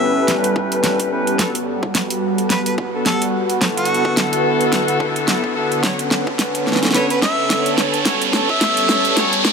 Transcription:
Already playing: G3 B3 C#4 E4 G4 A4 B4 C#5 E5 A5, riser
0.28 snare, closed hi-hat
0.44 closed hi-hat
0.56 kick
0.72 closed hi-hat
0.84 snare, closed hi-hat
0.99 kick, closed hi-hat
1.12 C#4 E4 G4 B4
1.27 closed hi-hat
1.39 B3 D4 F#4 A4, kick, snare, closed hi-hat
1.55 closed hi-hat
1.68 F#5
1.83 kick
1.95 snare, closed hi-hat
2.10 closed hi-hat
2.38 closed hi-hat
2.50 B4, snare, closed hi-hat
2.66 B4, closed hi-hat
2.78 kick
2.94 B3 D4 F#4 A4
3.06 A4, snare, closed hi-hat
3.22 closed hi-hat
3.50 closed hi-hat
3.61 D3 B3 E4 F#4 A4, kick, snare, closed hi-hat
3.77 F#4, closed hi-hat
3.85 closed hi-hat
3.94 closed hi-hat
4.05 kick
4.17 snare, closed hi-hat
4.33 closed hi-hat
4.61 closed hi-hat
4.73 snare, closed hi-hat
4.88 closed hi-hat
5.00 kick
5.16 closed hi-hat
5.28 snare, closed hi-hat
5.44 kick
5.56 B3 E4 F#4 A4
5.72 closed hi-hat
5.83 C#4 D4 F#4 A4 C#5, kick, snare, closed hi-hat
5.99 closed hi-hat
6.11 snare
6.17 C#5
6.27 kick
6.39 snare, closed hi-hat
6.55 closed hi-hat
6.67 snare
6.72 snare
6.76 snare
6.83 A5, snare, closed hi-hat
6.85 snare
6.91 B4, snare
6.94 D4 F#4 A4 C#5, snare, closed hi-hat
7.10 B4, closed hi-hat
7.22 E5, kick, snare
7.50 snare, closed hi-hat
7.66 closed hi-hat
7.78 snare
7.94 closed hi-hat
8.05 G3 C#4 F#4 A4 C#5, kick, snare, closed hi-hat
8.22 closed hi-hat
8.33 snare
8.49 E5, kick
8.61 snare, closed hi-hat
8.77 closed hi-hat
8.89 snare
9.05 closed hi-hat
9.17 C#4 F#4 A4 C#5, snare, closed hi-hat
9.33 closed hi-hat
9.45 kick, snare

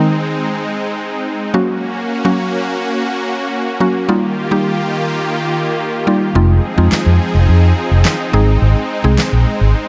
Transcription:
Already playing: G#3 C4 D#4
0.00 D#3 G#3 C4 D#4
1.54 F#3 A#3 C#4 F#4
2.25 F#3 A#3 C#4 F#4
3.80 F#3 A#3 C#4 F#4
4.09 D#3 G3 A#3 D#4 F4 G4
4.51 G3 A#3 D#4 G4
6.07 G3 A#3 D#4 F4
6.35 F1 F3 G#3 C4 D#4 F4 G#4
6.78 F2 G#3 C4 D#4 F4
6.92 muted fingered electric bass stroke, snare, clap
7.06 F2
7.35 F1
7.49 F2
7.91 F1
8.05 snare, clap
8.33 G#1 G#3 C4 D#4 G#4
8.62 G#1
9.04 C2 G#3 C4 D#4 G#4
9.19 snare, clap
9.33 A#1
9.61 G#1

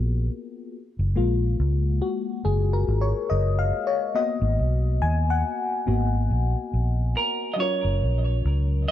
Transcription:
Already playing: A#1 A#3 B3 F4 F#4
0.99 F#1
1.16 A#1 G#3 A#3 F4
1.60 C#2
2.02 F#4
2.45 F#1 G#4
2.73 A#4
2.88 G#1
3.01 C#5
3.30 F#1 D#5
3.59 F5
3.87 C#5
4.15 A#3 B3 F#4 D#5
4.41 G#1
4.59 B1
5.02 D#2 G#5
5.30 F#5
5.87 G#1 A#3 B3 F#4
6.31 A#1
6.73 A#1
7.17 A#4
7.54 F#3 D#5
7.58 C#4 F4 A#4 C#5
7.84 F#1
8.03 A#1
8.45 C#2
8.88 D#5

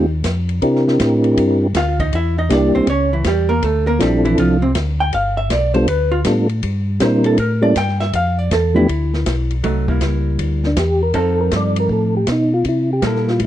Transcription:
Already playing: D#2
0.24 F2, kick, snare, hi-hat pedal, ride
0.49 ride
0.62 C3 C4 D4 E4 G4 A#4, kick, ride
0.75 snare
0.88 snare
1.00 A2, kick, snare, hi-hat pedal, ride
1.24 ride
1.37 G2, kick, ride
1.74 D2 F4 F5, kick, snare, hi-hat pedal, ride
1.99 D#4 D#5, kick, ride
2.13 E2 E4 E5, kick, ride
2.38 D#4 D#5
2.49 C2 G3 A#3 D4 E4 G4 D5, kick, snare, hi-hat pedal, ride
2.75 C2 C4 C5
2.87 C#2 C#4 C#5, kick, ride
3.13 E3 E4
3.24 E2 G3 G4, kick, snare, hi-hat pedal, ride
3.49 A#3 A#4
3.62 D2 A3 A4, kick, ride
3.87 A#3 A#4
3.99 A#1 F3 G3 C4 D4 E4 G4 A4, kick, snare, hi-hat pedal, ride
4.25 E3 E4, ride
4.38 C2 F3 F4, kick, ride
4.62 C3 C4
4.75 D2, kick, snare, hi-hat pedal, ride
5.00 G5
5.13 G1 F5, kick, ride
5.37 E5
5.50 B1 D5, kick, snare, hi-hat pedal, ride
5.74 G3 B3 D4 F4 A4 C5, ride
5.88 D2 B4, kick, ride
6.12 F4
6.25 A2 G3 B3 D4 F4 A4, kick, snare, hi-hat pedal, ride
6.49 ride
6.63 G2, kick, ride
7.00 A#2 G3 C4 D4 E4 A#4 C5, kick, snare, hi-hat pedal, ride
7.24 A4, ride
7.38 A2 A#4, kick, ride
7.62 G3 A#3 C#4 E4 A4 D5
7.76 G2 G5, kick, snare, hi-hat pedal, ride
7.88 snare
8.00 E5, snare
8.13 F2 F5, kick, ride
8.39 D5
8.51 E2 A4, kick, snare, hi-hat pedal, ride
8.74 F3 A3 B3 D4 E4 G4
8.89 D2, kick, ride
9.14 snare
9.26 B1, kick, snare, hi-hat pedal, ride
9.51 ride
9.64 C2 F#3 A3 D#4, kick, ride
9.88 G3 A#3 E4, kick
10.01 C#2, kick, snare, hi-hat pedal, ride
10.39 D2, kick, ride
10.64 D4, snare
10.76 E2 G4, kick, snare, hi-hat pedal, ride
11.03 A#4
11.14 F2 F3 C4 D#4 A4, kick, ride
11.18 A4
11.41 A#4
11.51 G2, kick, snare, hi-hat pedal, ride
11.56 D5
11.76 A#4, ride
11.89 A2 A4, kick
12.17 G4
12.27 B2, kick, snare, hi-hat pedal, ride
12.32 D#4
12.54 F4
12.64 C3, kick, ride
12.69 E4
12.93 G4
13.02 A#2 G3 A#3 E4, kick, snare, hi-hat pedal, ride
13.07 A4
13.16 snare
13.28 F4, snare
13.40 A2, kick, ride

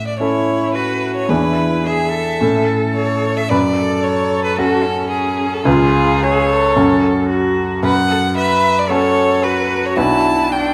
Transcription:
Already playing: A2
0.07 D5
0.19 C#4 E4 A4 C#5
0.75 F#4 B4
1.16 C#5
1.29 E2 D4 E4 G#4 B4
1.86 G#4 E5
2.14 A4
2.41 A2 C#4 E4 A4
2.95 C#5
3.37 E5
3.49 F#2 B4 D5
3.77 A4
4.03 C#5
4.45 B4
4.58 C#4 F#4 A4
4.84 C#4
5.10 G#4
5.53 A4
5.65 C#2 C#4 F4 G#4 B4
6.23 G#4 C#5
6.50 A4
6.76 F#2 C#4 F#4 A4
7.29 F#4
7.83 F#2 B4 F#5
8.10 A4
8.36 B4 E5
8.79 D5
8.90 C#4 F#4 A4 C#5
9.43 F#4 B4
9.86 C#5
9.97 B1 D4 E4 F#4 B4 A5
10.52 D4 G5

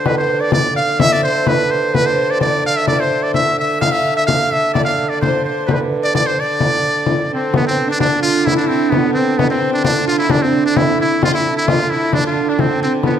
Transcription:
Already playing: A4 D5
0.03 D3 B4, frame drum
0.16 C5
0.39 D5
0.51 D5, frame drum
0.76 F5, frame drum
0.99 E5, frame drum
1.10 D5
1.22 C5
1.44 B4, frame drum
1.70 C5, frame drum
1.93 B4, frame drum
2.04 C5
2.29 D5
2.41 D5, frame drum
2.65 F5, frame drum
2.77 E5
2.87 D5, frame drum
3.00 C5
3.12 frame drum
3.23 D5
3.34 E5, frame drum
3.57 E5, frame drum
3.62 E5
3.81 D3 F5, frame drum
3.92 E5
3.97 E5
4.17 E5
4.27 F5, frame drum
4.52 E5, frame drum
4.74 D5, frame drum
4.85 F5
5.09 D5
5.21 C5, frame drum
5.44 C5, frame drum
5.67 B4 C5, frame drum
5.73 B4
6.02 D5
6.14 D5, frame drum
6.26 C5
6.39 D5, frame drum
6.60 frame drum
7.06 frame drum
7.30 C4, frame drum
7.54 D3 B3, frame drum
7.64 C4
7.86 D4
7.91 D4
7.97 D4, frame drum
8.20 F4
8.44 E4, frame drum
8.57 D4
8.68 C4
8.90 B3, frame drum
9.14 C4, frame drum
9.37 B3, frame drum
9.48 C4
9.72 D4
9.84 D4, frame drum
10.06 F4, frame drum
10.17 E4 F4
10.29 D4, frame drum
10.40 C4
10.65 D4
10.77 E4, frame drum
10.98 E4
11.21 D3 F4, frame drum
11.33 E4
11.54 E4
11.66 F4, frame drum
11.90 E4, frame drum
12.12 D4, frame drum
12.26 F4
12.48 D4
12.59 C4, frame drum
12.81 C4, frame drum
13.03 B3, frame drum

